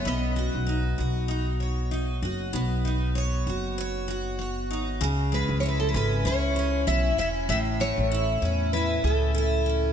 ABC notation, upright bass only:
X:1
M:4/4
L:1/16
Q:"Swing 16ths" 1/4=97
K:Bmix
V:1 name="Upright bass" clef=bass
B,,,3 B,,,3 B,,,8 F,,,2 | B,,,6 F,,,8 G,,,2 | C,,3 C,,3 G,,,2 C,,4 B,,,2 E,,,2 | A,,,3 A,,,3 E,,4 C,,6 |]